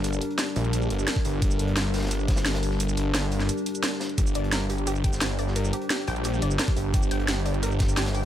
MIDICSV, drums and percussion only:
0, 0, Header, 1, 2, 480
1, 0, Start_track
1, 0, Key_signature, -2, "minor"
1, 0, Tempo, 344828
1, 58, Time_signature, 4, 2, 24, 8
1, 11485, End_track
2, 0, Start_track
2, 0, Title_t, "Drums"
2, 59, Note_on_c, 9, 42, 93
2, 59, Note_on_c, 9, 82, 51
2, 67, Note_off_c, 9, 42, 0
2, 67, Note_on_c, 9, 42, 83
2, 179, Note_off_c, 9, 82, 0
2, 179, Note_on_c, 9, 82, 58
2, 206, Note_off_c, 9, 42, 0
2, 299, Note_on_c, 9, 42, 63
2, 304, Note_off_c, 9, 42, 0
2, 304, Note_on_c, 9, 42, 59
2, 318, Note_off_c, 9, 82, 0
2, 425, Note_off_c, 9, 42, 0
2, 425, Note_on_c, 9, 42, 39
2, 528, Note_on_c, 9, 38, 99
2, 534, Note_off_c, 9, 42, 0
2, 534, Note_on_c, 9, 42, 88
2, 539, Note_off_c, 9, 38, 0
2, 539, Note_off_c, 9, 42, 0
2, 539, Note_on_c, 9, 38, 112
2, 539, Note_on_c, 9, 42, 88
2, 539, Note_on_c, 9, 82, 50
2, 678, Note_off_c, 9, 38, 0
2, 678, Note_off_c, 9, 42, 0
2, 678, Note_off_c, 9, 82, 0
2, 779, Note_on_c, 9, 46, 84
2, 779, Note_on_c, 9, 82, 28
2, 781, Note_on_c, 9, 42, 59
2, 899, Note_off_c, 9, 42, 0
2, 899, Note_on_c, 9, 42, 36
2, 918, Note_off_c, 9, 46, 0
2, 918, Note_off_c, 9, 82, 0
2, 1019, Note_off_c, 9, 42, 0
2, 1019, Note_on_c, 9, 42, 90
2, 1019, Note_on_c, 9, 82, 50
2, 1020, Note_off_c, 9, 42, 0
2, 1020, Note_on_c, 9, 42, 95
2, 1139, Note_off_c, 9, 82, 0
2, 1139, Note_on_c, 9, 82, 27
2, 1159, Note_off_c, 9, 42, 0
2, 1259, Note_on_c, 9, 42, 66
2, 1264, Note_off_c, 9, 42, 0
2, 1264, Note_on_c, 9, 42, 73
2, 1278, Note_off_c, 9, 82, 0
2, 1378, Note_on_c, 9, 82, 61
2, 1404, Note_off_c, 9, 42, 0
2, 1492, Note_on_c, 9, 38, 104
2, 1498, Note_off_c, 9, 38, 0
2, 1498, Note_off_c, 9, 82, 0
2, 1498, Note_on_c, 9, 38, 119
2, 1498, Note_on_c, 9, 42, 91
2, 1498, Note_on_c, 9, 82, 50
2, 1500, Note_off_c, 9, 42, 0
2, 1500, Note_on_c, 9, 42, 81
2, 1618, Note_off_c, 9, 38, 0
2, 1618, Note_on_c, 9, 38, 41
2, 1619, Note_on_c, 9, 36, 107
2, 1638, Note_off_c, 9, 82, 0
2, 1639, Note_off_c, 9, 42, 0
2, 1739, Note_on_c, 9, 46, 82
2, 1739, Note_on_c, 9, 82, 28
2, 1743, Note_on_c, 9, 42, 66
2, 1757, Note_off_c, 9, 38, 0
2, 1758, Note_off_c, 9, 36, 0
2, 1878, Note_off_c, 9, 46, 0
2, 1878, Note_off_c, 9, 82, 0
2, 1882, Note_off_c, 9, 42, 0
2, 1975, Note_on_c, 9, 42, 90
2, 1979, Note_off_c, 9, 42, 0
2, 1979, Note_on_c, 9, 36, 114
2, 1979, Note_on_c, 9, 42, 96
2, 1979, Note_on_c, 9, 82, 55
2, 2099, Note_off_c, 9, 82, 0
2, 2099, Note_on_c, 9, 82, 62
2, 2118, Note_off_c, 9, 36, 0
2, 2118, Note_off_c, 9, 42, 0
2, 2215, Note_on_c, 9, 42, 75
2, 2218, Note_off_c, 9, 42, 0
2, 2218, Note_on_c, 9, 42, 67
2, 2238, Note_off_c, 9, 82, 0
2, 2332, Note_off_c, 9, 42, 0
2, 2332, Note_on_c, 9, 42, 48
2, 2459, Note_off_c, 9, 42, 0
2, 2459, Note_on_c, 9, 38, 117
2, 2459, Note_on_c, 9, 42, 91
2, 2459, Note_on_c, 9, 82, 52
2, 2460, Note_off_c, 9, 42, 0
2, 2460, Note_on_c, 9, 42, 88
2, 2473, Note_off_c, 9, 38, 0
2, 2473, Note_on_c, 9, 38, 114
2, 2598, Note_off_c, 9, 82, 0
2, 2599, Note_off_c, 9, 42, 0
2, 2612, Note_off_c, 9, 38, 0
2, 2699, Note_on_c, 9, 46, 83
2, 2699, Note_on_c, 9, 82, 29
2, 2700, Note_on_c, 9, 38, 92
2, 2705, Note_on_c, 9, 42, 65
2, 2753, Note_off_c, 9, 42, 0
2, 2753, Note_on_c, 9, 42, 69
2, 2762, Note_off_c, 9, 38, 0
2, 2762, Note_on_c, 9, 38, 83
2, 2819, Note_off_c, 9, 42, 0
2, 2819, Note_on_c, 9, 42, 35
2, 2821, Note_off_c, 9, 42, 0
2, 2821, Note_on_c, 9, 42, 62
2, 2828, Note_off_c, 9, 38, 0
2, 2828, Note_on_c, 9, 38, 93
2, 2838, Note_off_c, 9, 46, 0
2, 2838, Note_off_c, 9, 82, 0
2, 2878, Note_off_c, 9, 38, 0
2, 2878, Note_on_c, 9, 38, 83
2, 2880, Note_off_c, 9, 42, 0
2, 2880, Note_on_c, 9, 42, 65
2, 2936, Note_off_c, 9, 42, 0
2, 2936, Note_on_c, 9, 42, 93
2, 2939, Note_off_c, 9, 42, 0
2, 2939, Note_on_c, 9, 42, 94
2, 2939, Note_on_c, 9, 82, 53
2, 3017, Note_off_c, 9, 38, 0
2, 3059, Note_off_c, 9, 82, 0
2, 3059, Note_on_c, 9, 82, 29
2, 3078, Note_off_c, 9, 42, 0
2, 3177, Note_on_c, 9, 42, 83
2, 3178, Note_on_c, 9, 36, 105
2, 3179, Note_off_c, 9, 42, 0
2, 3179, Note_on_c, 9, 38, 109
2, 3179, Note_on_c, 9, 42, 67
2, 3198, Note_off_c, 9, 82, 0
2, 3290, Note_off_c, 9, 38, 0
2, 3290, Note_on_c, 9, 38, 115
2, 3299, Note_on_c, 9, 82, 63
2, 3301, Note_off_c, 9, 42, 0
2, 3301, Note_on_c, 9, 42, 76
2, 3318, Note_off_c, 9, 36, 0
2, 3416, Note_off_c, 9, 38, 0
2, 3416, Note_on_c, 9, 38, 99
2, 3419, Note_off_c, 9, 38, 0
2, 3419, Note_off_c, 9, 42, 0
2, 3419, Note_off_c, 9, 82, 0
2, 3419, Note_on_c, 9, 38, 115
2, 3419, Note_on_c, 9, 42, 93
2, 3419, Note_on_c, 9, 82, 52
2, 3422, Note_off_c, 9, 42, 0
2, 3422, Note_on_c, 9, 42, 87
2, 3546, Note_off_c, 9, 42, 0
2, 3546, Note_on_c, 9, 42, 85
2, 3547, Note_off_c, 9, 38, 0
2, 3547, Note_on_c, 9, 38, 115
2, 3558, Note_off_c, 9, 82, 0
2, 3659, Note_off_c, 9, 42, 0
2, 3659, Note_on_c, 9, 42, 72
2, 3659, Note_on_c, 9, 46, 88
2, 3659, Note_on_c, 9, 82, 29
2, 3686, Note_off_c, 9, 38, 0
2, 3766, Note_on_c, 9, 38, 46
2, 3798, Note_off_c, 9, 42, 0
2, 3798, Note_off_c, 9, 46, 0
2, 3798, Note_off_c, 9, 82, 0
2, 3896, Note_on_c, 9, 42, 99
2, 3899, Note_off_c, 9, 42, 0
2, 3899, Note_on_c, 9, 42, 101
2, 3899, Note_on_c, 9, 82, 56
2, 3905, Note_off_c, 9, 38, 0
2, 4019, Note_off_c, 9, 82, 0
2, 4019, Note_on_c, 9, 82, 63
2, 4038, Note_off_c, 9, 42, 0
2, 4139, Note_off_c, 9, 82, 0
2, 4139, Note_on_c, 9, 42, 72
2, 4139, Note_on_c, 9, 82, 29
2, 4146, Note_off_c, 9, 42, 0
2, 4146, Note_on_c, 9, 42, 72
2, 4278, Note_off_c, 9, 82, 0
2, 4286, Note_off_c, 9, 42, 0
2, 4376, Note_on_c, 9, 38, 121
2, 4379, Note_off_c, 9, 38, 0
2, 4379, Note_on_c, 9, 38, 114
2, 4379, Note_on_c, 9, 42, 91
2, 4379, Note_on_c, 9, 82, 53
2, 4380, Note_off_c, 9, 42, 0
2, 4380, Note_on_c, 9, 42, 85
2, 4519, Note_off_c, 9, 38, 0
2, 4519, Note_off_c, 9, 82, 0
2, 4520, Note_off_c, 9, 42, 0
2, 4615, Note_on_c, 9, 42, 70
2, 4619, Note_on_c, 9, 46, 80
2, 4619, Note_on_c, 9, 82, 30
2, 4739, Note_off_c, 9, 42, 0
2, 4739, Note_on_c, 9, 38, 35
2, 4739, Note_on_c, 9, 42, 39
2, 4758, Note_off_c, 9, 46, 0
2, 4758, Note_off_c, 9, 82, 0
2, 4859, Note_off_c, 9, 42, 0
2, 4859, Note_on_c, 9, 42, 68
2, 4859, Note_on_c, 9, 82, 55
2, 4878, Note_off_c, 9, 38, 0
2, 4977, Note_off_c, 9, 42, 0
2, 4977, Note_on_c, 9, 42, 40
2, 4978, Note_off_c, 9, 82, 0
2, 4978, Note_on_c, 9, 82, 29
2, 5098, Note_off_c, 9, 42, 0
2, 5098, Note_on_c, 9, 42, 69
2, 5118, Note_off_c, 9, 82, 0
2, 5219, Note_off_c, 9, 42, 0
2, 5219, Note_on_c, 9, 42, 37
2, 5219, Note_on_c, 9, 82, 65
2, 5338, Note_off_c, 9, 42, 0
2, 5338, Note_on_c, 9, 38, 107
2, 5338, Note_on_c, 9, 42, 88
2, 5339, Note_off_c, 9, 38, 0
2, 5339, Note_off_c, 9, 42, 0
2, 5339, Note_off_c, 9, 82, 0
2, 5339, Note_on_c, 9, 38, 118
2, 5339, Note_on_c, 9, 42, 96
2, 5339, Note_on_c, 9, 82, 53
2, 5464, Note_off_c, 9, 38, 0
2, 5464, Note_on_c, 9, 38, 41
2, 5478, Note_off_c, 9, 42, 0
2, 5478, Note_off_c, 9, 82, 0
2, 5573, Note_off_c, 9, 38, 0
2, 5573, Note_on_c, 9, 38, 106
2, 5579, Note_on_c, 9, 46, 85
2, 5579, Note_on_c, 9, 82, 30
2, 5580, Note_on_c, 9, 42, 82
2, 5699, Note_off_c, 9, 42, 0
2, 5699, Note_on_c, 9, 42, 38
2, 5712, Note_off_c, 9, 38, 0
2, 5718, Note_off_c, 9, 46, 0
2, 5718, Note_off_c, 9, 82, 0
2, 5818, Note_off_c, 9, 42, 0
2, 5818, Note_on_c, 9, 42, 102
2, 5818, Note_on_c, 9, 82, 56
2, 5819, Note_on_c, 9, 36, 127
2, 5938, Note_off_c, 9, 82, 0
2, 5938, Note_on_c, 9, 82, 60
2, 5957, Note_off_c, 9, 42, 0
2, 5958, Note_off_c, 9, 36, 0
2, 6049, Note_on_c, 9, 42, 69
2, 6058, Note_off_c, 9, 42, 0
2, 6058, Note_on_c, 9, 42, 70
2, 6078, Note_off_c, 9, 82, 0
2, 6183, Note_off_c, 9, 42, 0
2, 6183, Note_on_c, 9, 42, 48
2, 6299, Note_off_c, 9, 42, 0
2, 6299, Note_on_c, 9, 38, 118
2, 6299, Note_on_c, 9, 42, 99
2, 6299, Note_on_c, 9, 82, 53
2, 6300, Note_off_c, 9, 42, 0
2, 6300, Note_on_c, 9, 42, 87
2, 6310, Note_off_c, 9, 38, 0
2, 6310, Note_on_c, 9, 38, 113
2, 6438, Note_off_c, 9, 82, 0
2, 6440, Note_off_c, 9, 42, 0
2, 6450, Note_off_c, 9, 38, 0
2, 6538, Note_on_c, 9, 46, 81
2, 6538, Note_on_c, 9, 82, 31
2, 6539, Note_on_c, 9, 42, 65
2, 6658, Note_off_c, 9, 42, 0
2, 6658, Note_on_c, 9, 42, 37
2, 6678, Note_off_c, 9, 46, 0
2, 6678, Note_off_c, 9, 82, 0
2, 6777, Note_off_c, 9, 42, 0
2, 6777, Note_on_c, 9, 42, 89
2, 6779, Note_off_c, 9, 42, 0
2, 6779, Note_on_c, 9, 42, 98
2, 6779, Note_on_c, 9, 82, 55
2, 6899, Note_off_c, 9, 82, 0
2, 6899, Note_on_c, 9, 82, 29
2, 6918, Note_off_c, 9, 42, 0
2, 7018, Note_on_c, 9, 42, 70
2, 7019, Note_on_c, 9, 36, 108
2, 7023, Note_off_c, 9, 42, 0
2, 7023, Note_on_c, 9, 42, 71
2, 7038, Note_off_c, 9, 82, 0
2, 7138, Note_on_c, 9, 82, 61
2, 7139, Note_on_c, 9, 38, 53
2, 7158, Note_off_c, 9, 36, 0
2, 7162, Note_off_c, 9, 42, 0
2, 7255, Note_on_c, 9, 42, 91
2, 7258, Note_off_c, 9, 38, 0
2, 7258, Note_off_c, 9, 42, 0
2, 7258, Note_off_c, 9, 82, 0
2, 7258, Note_on_c, 9, 38, 123
2, 7258, Note_on_c, 9, 42, 96
2, 7258, Note_on_c, 9, 82, 55
2, 7265, Note_off_c, 9, 38, 0
2, 7265, Note_on_c, 9, 38, 109
2, 7397, Note_off_c, 9, 42, 0
2, 7397, Note_off_c, 9, 82, 0
2, 7404, Note_off_c, 9, 38, 0
2, 7498, Note_on_c, 9, 46, 81
2, 7498, Note_on_c, 9, 82, 30
2, 7504, Note_on_c, 9, 42, 62
2, 7619, Note_on_c, 9, 38, 43
2, 7637, Note_off_c, 9, 46, 0
2, 7637, Note_off_c, 9, 82, 0
2, 7643, Note_off_c, 9, 42, 0
2, 7738, Note_on_c, 9, 42, 103
2, 7738, Note_on_c, 9, 82, 55
2, 7759, Note_off_c, 9, 38, 0
2, 7858, Note_off_c, 9, 82, 0
2, 7858, Note_on_c, 9, 82, 60
2, 7877, Note_off_c, 9, 42, 0
2, 7976, Note_on_c, 9, 42, 67
2, 7978, Note_off_c, 9, 42, 0
2, 7978, Note_on_c, 9, 42, 73
2, 7997, Note_off_c, 9, 82, 0
2, 8095, Note_off_c, 9, 42, 0
2, 8095, Note_on_c, 9, 42, 39
2, 8218, Note_off_c, 9, 42, 0
2, 8218, Note_on_c, 9, 38, 122
2, 8218, Note_on_c, 9, 42, 99
2, 8218, Note_on_c, 9, 82, 52
2, 8224, Note_off_c, 9, 38, 0
2, 8224, Note_on_c, 9, 38, 100
2, 8228, Note_off_c, 9, 42, 0
2, 8228, Note_on_c, 9, 42, 77
2, 8357, Note_off_c, 9, 82, 0
2, 8363, Note_off_c, 9, 38, 0
2, 8367, Note_off_c, 9, 42, 0
2, 8453, Note_on_c, 9, 42, 62
2, 8458, Note_on_c, 9, 46, 76
2, 8458, Note_on_c, 9, 82, 27
2, 8578, Note_off_c, 9, 42, 0
2, 8578, Note_on_c, 9, 42, 38
2, 8597, Note_off_c, 9, 46, 0
2, 8597, Note_off_c, 9, 82, 0
2, 8685, Note_off_c, 9, 42, 0
2, 8685, Note_on_c, 9, 42, 92
2, 8698, Note_off_c, 9, 42, 0
2, 8698, Note_on_c, 9, 42, 100
2, 8698, Note_on_c, 9, 82, 53
2, 8818, Note_off_c, 9, 82, 0
2, 8818, Note_on_c, 9, 82, 28
2, 8837, Note_off_c, 9, 42, 0
2, 8933, Note_on_c, 9, 42, 73
2, 8938, Note_off_c, 9, 42, 0
2, 8938, Note_on_c, 9, 42, 72
2, 8958, Note_off_c, 9, 82, 0
2, 9058, Note_on_c, 9, 82, 61
2, 9077, Note_off_c, 9, 42, 0
2, 9178, Note_off_c, 9, 82, 0
2, 9178, Note_on_c, 9, 38, 126
2, 9178, Note_on_c, 9, 42, 97
2, 9178, Note_on_c, 9, 82, 54
2, 9180, Note_off_c, 9, 38, 0
2, 9180, Note_off_c, 9, 42, 0
2, 9180, Note_on_c, 9, 38, 111
2, 9180, Note_on_c, 9, 42, 97
2, 9299, Note_on_c, 9, 36, 114
2, 9302, Note_off_c, 9, 38, 0
2, 9302, Note_on_c, 9, 38, 42
2, 9317, Note_off_c, 9, 82, 0
2, 9320, Note_off_c, 9, 42, 0
2, 9418, Note_on_c, 9, 46, 79
2, 9418, Note_on_c, 9, 82, 29
2, 9430, Note_on_c, 9, 42, 68
2, 9438, Note_off_c, 9, 36, 0
2, 9442, Note_off_c, 9, 38, 0
2, 9557, Note_off_c, 9, 46, 0
2, 9557, Note_off_c, 9, 82, 0
2, 9569, Note_off_c, 9, 42, 0
2, 9659, Note_on_c, 9, 36, 127
2, 9659, Note_on_c, 9, 42, 94
2, 9659, Note_on_c, 9, 82, 51
2, 9779, Note_off_c, 9, 82, 0
2, 9779, Note_on_c, 9, 82, 59
2, 9798, Note_off_c, 9, 36, 0
2, 9798, Note_off_c, 9, 42, 0
2, 9899, Note_on_c, 9, 42, 69
2, 9905, Note_off_c, 9, 42, 0
2, 9905, Note_on_c, 9, 42, 76
2, 9918, Note_off_c, 9, 82, 0
2, 10018, Note_off_c, 9, 42, 0
2, 10018, Note_on_c, 9, 42, 44
2, 10139, Note_off_c, 9, 42, 0
2, 10139, Note_on_c, 9, 38, 123
2, 10139, Note_on_c, 9, 42, 98
2, 10139, Note_on_c, 9, 82, 48
2, 10144, Note_off_c, 9, 38, 0
2, 10144, Note_on_c, 9, 38, 127
2, 10146, Note_off_c, 9, 42, 0
2, 10146, Note_on_c, 9, 42, 96
2, 10278, Note_off_c, 9, 82, 0
2, 10283, Note_off_c, 9, 38, 0
2, 10285, Note_off_c, 9, 42, 0
2, 10378, Note_on_c, 9, 42, 71
2, 10379, Note_on_c, 9, 46, 75
2, 10379, Note_on_c, 9, 82, 28
2, 10499, Note_off_c, 9, 42, 0
2, 10499, Note_on_c, 9, 42, 38
2, 10518, Note_off_c, 9, 46, 0
2, 10518, Note_off_c, 9, 82, 0
2, 10619, Note_off_c, 9, 42, 0
2, 10619, Note_on_c, 9, 42, 96
2, 10619, Note_on_c, 9, 82, 50
2, 10739, Note_off_c, 9, 82, 0
2, 10739, Note_on_c, 9, 82, 28
2, 10758, Note_off_c, 9, 42, 0
2, 10844, Note_on_c, 9, 42, 88
2, 10859, Note_off_c, 9, 42, 0
2, 10859, Note_on_c, 9, 36, 114
2, 10859, Note_on_c, 9, 38, 96
2, 10859, Note_on_c, 9, 42, 71
2, 10878, Note_off_c, 9, 82, 0
2, 10979, Note_on_c, 9, 82, 57
2, 10998, Note_off_c, 9, 36, 0
2, 10998, Note_off_c, 9, 38, 0
2, 10998, Note_off_c, 9, 42, 0
2, 11099, Note_off_c, 9, 82, 0
2, 11099, Note_on_c, 9, 38, 126
2, 11099, Note_on_c, 9, 42, 100
2, 11099, Note_on_c, 9, 82, 49
2, 11100, Note_off_c, 9, 42, 0
2, 11100, Note_on_c, 9, 42, 64
2, 11219, Note_off_c, 9, 38, 0
2, 11219, Note_on_c, 9, 38, 117
2, 11221, Note_off_c, 9, 42, 0
2, 11221, Note_on_c, 9, 42, 90
2, 11238, Note_off_c, 9, 82, 0
2, 11339, Note_on_c, 9, 46, 77
2, 11339, Note_on_c, 9, 82, 29
2, 11358, Note_off_c, 9, 38, 0
2, 11360, Note_off_c, 9, 42, 0
2, 11478, Note_off_c, 9, 46, 0
2, 11478, Note_off_c, 9, 82, 0
2, 11485, End_track
0, 0, End_of_file